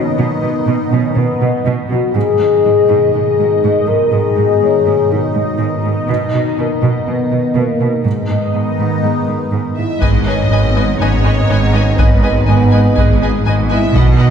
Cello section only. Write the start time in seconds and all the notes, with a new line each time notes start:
0.18 B2
0.43 B2
0.67 B2
0.92 B2
1.17 B2
1.42 B2
1.66 B2
1.91 B2
2.15 G#2
2.40 G#2
2.65 G#2
2.89 G#2
3.15 G#2
3.40 G#2
3.64 G#2
3.88 G#2
4.12 G#2
4.37 G#2
4.62 G#2
4.86 G#2
5.11 G#2
5.35 G#2
5.60 G#2
5.84 G#2
6.09 B2
6.33 B2
6.58 B2
6.82 B2
7.07 B2
7.32 B2
7.56 B2
7.81 B2
8.05 G#2
8.30 G#2
8.55 G#2
8.79 G#2
9.04 G#2
9.29 G#2
9.53 G#2
9.77 G#2
10.02 G#2
10.51 G#2
11.01 G#2
11.49 G#2
11.99 G#2
12.48 G#2
12.97 G#2
13.46 G#2
13.95 B2